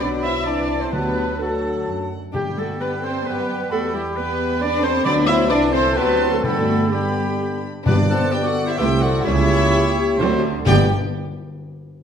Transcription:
Already playing: D3
0.00 B1 F#3 B3 D4 F#4 B4 D5 F#5 B5
0.23 E4 C5 E5
0.44 C2 E3 C4 D4 E4 B4 D5 A5
0.80 C4 A4 C5
0.92 D2 D3 F#3 B3 D4 F#4 G4 B4 F#5 A5
1.39 F#3 A3 D4 F#4 A4 F#5 A5
1.88 F#2
2.33 G2 G3 D4 G4 G5
2.57 A3 F#4 A4
2.80 B3 G4 B4 G5
3.02 C4 A4 C5
3.25 F#2 B3 G4 B4 G5
3.70 E2 A3 B3 F#4 G4 A4 G5 B5
3.93 G3 E4 G4
4.15 B3 G4 B4 G5
4.60 D4 B4 D5 A5
4.82 C4 A4 C5
5.04 D2 D3 F#3 B3 D4 F#4 B4 D5 B5
5.26 E4 C5 E5
5.48 C2 E3 C4 D4 E4 B4 D5 A5
5.72 C4 A4 C5 B5
5.95 D2 F#3 B3 C4 F#4 G4 B4 A5 C6
6.20 E4
6.30 A3 F#4 A4
6.42 G2 D3 A3 B3 D4 F#4 A4 G5 B5
6.91 G3 B3 D4 G4 G5 B5
7.85 G1 G2 B3 D4 G4 B4 D5
8.09 A4 C5 F#5 A5
8.32 G4 B4 D5 G5
8.43 F#4 A4 D5 F#5
8.66 E4 G4 C5 E5
8.76 C2 C3 A3 E4 G4 B4 C5 E5 G5
9.01 F#4 A4 D5 F#5
9.23 C#2 C#3 G3 A#3 C#4 E4 G4 C#5 E5
10.17 D2 D3 F#3 A3 C4 F#4 C5
10.66 G1 G2 G3 B3 G4 D5 G5

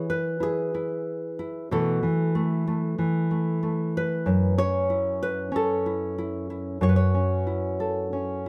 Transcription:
Already playing: E3 E4 C#5
0.10 B4
0.40 E4 G#4
0.75 E4
1.39 E4
1.71 B2 E3 A3 A4
2.03 E3
2.35 A3
2.67 A3
2.98 E3
3.31 A3
3.63 A3
3.97 B4
4.26 F#2
4.58 C#4 C#5
4.90 E4
5.23 B4
5.52 C#4
5.56 A4
5.86 E4
6.18 E4
6.50 E4
6.81 F#2 C#5
6.89 B4
6.96 C#5
7.14 C#4
7.47 E4
7.80 A4
8.13 C#4

